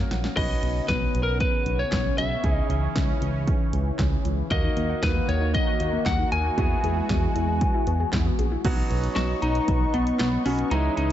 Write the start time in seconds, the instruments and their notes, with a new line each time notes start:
Already playing: grand piano A#3 C#4 F#4 A#4
0.11 analog synth bass A#1, synth pluck F#5, snare, closed hi-hat
0.24 synth pluck C#4, snare
0.37 analog synth bass B1, analog synth pad C#3 B3 C#4, grand piano C#4 D#4 F#4 B4, lead electric guitar D#5, kick, closed hi-hat, crash
0.63 analog synth bass B1, closed hi-hat
0.88 analog synth bass B1, lead electric guitar B4, kick, snare, closed hi-hat
1.15 analog synth bass B1, closed hi-hat
1.23 lead electric guitar A#4
1.40 lead electric guitar B4, kick, closed hi-hat
1.66 analog synth bass B1, closed hi-hat
1.79 lead electric guitar C#5
1.92 analog synth bass B1, kick, snare, clap, closed hi-hat
2.18 analog synth bass B1, lead electric guitar E5, closed hi-hat
2.44 analog synth bass C#2, analog synth pad E3, grand piano C#4 D#4 E4 G#4, kick, closed hi-hat
2.53 lead electric guitar D#5
2.70 analog synth bass C#2, closed hi-hat
2.96 analog synth bass C#2, kick, snare, closed hi-hat
3.21 analog synth bass C#2, closed hi-hat
3.48 kick, closed hi-hat
3.73 analog synth bass C#2, closed hi-hat
3.99 analog synth bass C#2, kick, snare, clap, closed hi-hat
4.25 analog synth bass C#2, closed hi-hat
4.51 analog synth bass D#2, analog synth pad D#3 A#3 F#4, grand piano A#3 D#4 F#4 A#4, lead electric guitar D#5, synth pluck F#5, kick, closed hi-hat
4.64 synth pluck D#4
4.77 analog synth bass D#2, synth pluck A#3, closed hi-hat
4.90 synth pluck F#5
5.03 analog synth bass D#2, synth pluck D#4, lead electric guitar B4, kick, snare, closed hi-hat
5.15 synth pluck A#3
5.28 analog synth bass D#2, lead electric guitar C#5, synth pluck F#5, closed hi-hat
5.41 synth pluck D#4
5.54 synth pluck A#3, lead electric guitar D#5, kick, closed hi-hat
5.67 synth pluck F#5
5.80 analog synth bass D#2, synth pluck D#4, closed hi-hat
5.93 synth pluck A#3
6.06 analog synth bass D#2, synth pluck F#5, lead electric guitar F#5, kick, snare, clap, closed hi-hat
6.19 synth pluck D#4
6.32 analog synth bass D#2, synth pluck A#3, grand piano A#3 D#4 F#4 A#4, lead electric guitar G#5, closed hi-hat
6.45 synth pluck F#5
6.58 analog synth bass E2, analog synth pad E3 G#3, grand piano B3 E4 F#4 G#4, synth pluck E4, kick, closed hi-hat
6.84 analog synth bass E2, synth pluck G#4, closed hi-hat
6.97 synth pluck E4
7.09 analog synth bass E2, synth pluck B3, kick, snare, closed hi-hat
7.23 synth pluck G#4
7.35 analog synth bass E2, synth pluck E4, closed hi-hat
7.48 synth pluck B3
7.61 kick, closed hi-hat
7.74 synth pluck E4
7.87 analog synth bass E2, synth pluck B3, closed hi-hat
8.00 synth pluck G#4
8.13 analog synth bass E2, synth pluck E4, kick, snare, clap, closed hi-hat
8.26 synth pluck B3
8.39 analog synth bass A#1, synth pluck G#4, closed hi-hat
8.52 synth pluck E4
8.65 analog synth bass B1, grand piano F#3 B3 C#4 D#4 F#4, analog synth pad B4 D#5 C#6, kick, closed hi-hat, crash
8.91 analog synth bass B1, closed hi-hat
9.04 closed hi-hat
9.16 analog synth bass B1, lead electric guitar F#4, snare, closed hi-hat
9.42 analog synth bass B1, lead electric guitar D#4, closed hi-hat
9.55 closed hi-hat
9.68 analog synth bass B1, kick, closed hi-hat
9.94 analog synth bass B1, lead electric guitar B3, closed hi-hat
10.07 closed hi-hat
10.19 analog synth bass B1, lead electric guitar B3, snare, clap, closed hi-hat
10.45 analog synth bass B1, grand piano F#3 B3 C#4 D#4 F#4, lead electric guitar C#4, open hi-hat
10.59 closed hi-hat
10.71 analog synth bass C#2, grand piano E3 G#3 C#4 E4 D#5, lead electric guitar D#4, analog synth pad C#5 D#5 D#6, closed hi-hat
10.97 analog synth bass C#2, lead electric guitar D#4, closed hi-hat